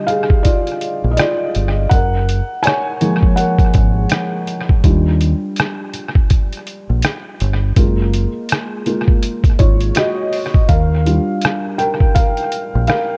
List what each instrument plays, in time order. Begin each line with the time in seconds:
Already playing: felt piano D3 G3 F4 G4 D#5
0.07 felt piano G#4 F5, closed hi-hat
0.30 kick
0.43 felt piano F4 D5, kick, closed hi-hat
0.67 closed hi-hat
0.81 closed hi-hat
1.04 fingered electric bass A#1
1.11 felt piano D#5
1.17 felt piano F4 D5, cross-stick, closed hi-hat
1.55 fingered electric bass G1, closed hi-hat
1.89 fingered electric bass F#1, felt piano A#4 F#5, kick, closed hi-hat
2.29 closed hi-hat
2.63 felt piano C#5 G#5, closed hi-hat
2.67 cross-stick
3.01 felt piano F3 G#3 A#3, closed hi-hat
3.23 kick
3.36 felt piano A#4 F#5, closed hi-hat
3.59 kick, closed hi-hat
3.74 fingered electric bass G#1, kick, closed hi-hat
4.09 cross-stick, closed hi-hat
4.47 closed hi-hat
4.69 kick
4.84 fingered electric bass D#2, felt piano G3 D4 F4, kick, closed hi-hat
5.21 closed hi-hat
5.56 cross-stick, closed hi-hat
5.94 closed hi-hat
6.15 kick
6.30 kick, closed hi-hat
6.53 closed hi-hat
6.67 closed hi-hat
6.90 fingered electric bass A#1
7.02 cross-stick, closed hi-hat
7.40 fingered electric bass G1, closed hi-hat
7.76 fingered electric bass F#1, felt piano G#3 A#3 F4, kick, closed hi-hat
8.14 closed hi-hat
8.49 cross-stick, closed hi-hat
8.86 felt piano G#3 A#3 F4, closed hi-hat
9.08 kick
9.23 closed hi-hat
9.44 kick, closed hi-hat
9.59 fingered electric bass G#1, felt piano F4 C#5, kick, closed hi-hat
9.81 closed hi-hat
9.95 felt piano F#4 D#5, cross-stick, closed hi-hat
10.33 open hi-hat
10.54 kick
10.69 fingered electric bass D#2, felt piano A#4 F5, kick, closed hi-hat
11.06 felt piano G3 D4 F4, closed hi-hat
11.42 cross-stick, closed hi-hat
11.78 felt piano A#4 G5, closed hi-hat
12.00 kick
12.15 felt piano A#4 F5, kick, closed hi-hat
12.37 closed hi-hat
12.52 closed hi-hat
12.75 fingered electric bass A#1
12.87 felt piano A#4 F5, cross-stick, closed hi-hat